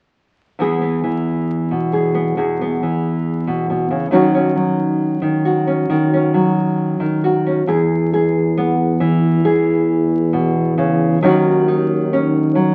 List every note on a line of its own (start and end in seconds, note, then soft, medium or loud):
0.59 2.36 E2 soft
0.59 1.02 E3 soft
0.59 0.81 B3 soft
0.59 1.92 G#4 soft
0.81 2.14 B3 soft
1.04 2.80 E3 soft
1.71 2.81 B2 soft
1.93 2.36 G#4 soft
2.15 2.61 B3 soft
2.37 4.14 E2 soft
2.37 4.08 G#4 soft
2.61 4.12 B3 soft
2.83 4.12 E3 soft
3.47 3.69 B2 soft
3.70 3.90 B2 soft
3.91 4.10 C#3 soft
4.11 5.21 D#3 soft
4.11 4.54 F#3 soft
4.11 4.33 C#4 soft
4.11 7.62 D#4 soft
4.11 5.44 F#4 soft
4.35 5.66 C#4 soft
4.56 6.33 F#3 soft
5.22 5.88 D#3 soft
5.45 5.89 F#4 soft
5.67 6.12 C#4 soft
5.90 6.99 D#3 soft
5.90 7.23 F#4 soft
6.14 7.45 C#4 soft
6.34 7.62 F#3 soft
7.00 7.61 D#3 soft
7.24 7.62 F#4 soft
7.46 7.63 C#4 soft
7.66 9.40 E2 medium
7.66 11.22 E2 medium
7.66 8.12 G#4 soft
8.13 9.44 G#4 medium
8.57 11.23 B3 soft
9.00 11.22 E3 soft
9.44 11.17 E2 medium
9.44 11.17 G#4 medium
10.33 10.77 B2 soft
10.78 11.22 C#3 soft
11.21 12.68 D#2 medium
11.21 12.75 D#3 medium
11.21 12.55 F#3 soft
11.21 12.11 C#4 soft
11.21 11.67 D#4 soft
11.21 12.75 F#4 medium
11.68 12.75 D#4 soft
12.13 12.75 C#4 soft
12.55 12.75 F#3 medium